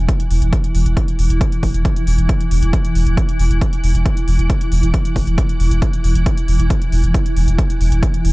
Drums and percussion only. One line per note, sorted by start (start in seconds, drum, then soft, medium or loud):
0.09 kick loud
0.09 closed hi-hat medium
0.20 closed hi-hat medium
0.31 open hi-hat loud
0.42 closed hi-hat medium
0.53 kick loud
0.53 closed hi-hat medium
0.64 closed hi-hat medium
0.75 open hi-hat loud
0.86 closed hi-hat medium
0.97 kick loud
0.97 closed hi-hat medium
1.08 closed hi-hat medium
1.19 open hi-hat loud
1.30 closed hi-hat soft
1.41 kick loud
1.41 closed hi-hat medium
1.52 closed hi-hat soft
1.63 kick medium
1.63 open hi-hat loud
1.74 closed hi-hat soft
1.85 kick loud
1.85 closed hi-hat medium
1.96 closed hi-hat soft
2.07 open hi-hat loud
2.18 closed hi-hat soft
2.29 kick loud
2.29 closed hi-hat medium
2.41 closed hi-hat medium
2.51 open hi-hat loud
2.63 closed hi-hat medium
2.73 kick loud
2.73 closed hi-hat medium
2.85 closed hi-hat soft
2.95 open hi-hat loud
3.07 closed hi-hat soft
3.17 kick loud
3.17 closed hi-hat medium
3.29 closed hi-hat soft
3.39 open hi-hat loud
3.51 closed hi-hat soft
3.61 kick loud
3.61 closed hi-hat medium
3.73 closed hi-hat soft
3.84 open hi-hat loud
3.95 closed hi-hat soft
4.06 kick loud
4.06 closed hi-hat medium
4.17 closed hi-hat soft
4.28 open hi-hat loud
4.39 closed hi-hat medium
4.50 kick loud
4.50 closed hi-hat medium
4.61 closed hi-hat soft
4.72 open hi-hat loud
4.83 closed hi-hat soft
4.94 kick loud
4.94 closed hi-hat medium
5.05 closed hi-hat soft
5.16 kick medium
5.16 open hi-hat loud
5.27 closed hi-hat soft
5.38 kick loud
5.38 closed hi-hat medium
5.49 closed hi-hat soft
5.60 open hi-hat loud
5.71 closed hi-hat soft
5.82 kick loud
5.82 closed hi-hat medium
5.93 closed hi-hat soft
6.04 open hi-hat loud
6.15 closed hi-hat soft
6.26 kick loud
6.26 closed hi-hat medium
6.37 closed hi-hat medium
6.48 open hi-hat loud
6.60 closed hi-hat soft
6.70 kick loud
6.70 closed hi-hat medium
6.82 closed hi-hat soft
6.92 open hi-hat loud
7.04 closed hi-hat soft
7.14 kick loud
7.14 closed hi-hat medium
7.26 closed hi-hat soft
7.37 open hi-hat loud
7.48 closed hi-hat medium
7.59 kick loud
7.59 closed hi-hat medium
7.70 closed hi-hat soft
7.81 open hi-hat loud
7.92 closed hi-hat medium
8.03 kick loud
8.03 closed hi-hat medium
8.14 closed hi-hat medium
8.25 open hi-hat loud